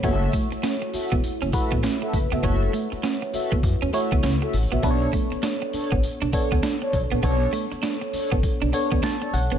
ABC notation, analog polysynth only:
X:1
M:4/4
L:1/16
Q:"Swing 16ths" 1/4=100
K:Bm
V:1 name="Analog polysynth"
[FAe]2 z4 [FAe] z3 [FAe] z2 [FAe] z [FAe] | [FAe]2 z4 [FAe] z3 [FAe] z2 [FAe] z [FAe] | [DAc]2 z4 [DAc] z3 [DAc] z2 [DAc] z [DAc] | [DAc]2 z4 [DAc] z3 [DAc] z2 [DAc] z [DAc] |]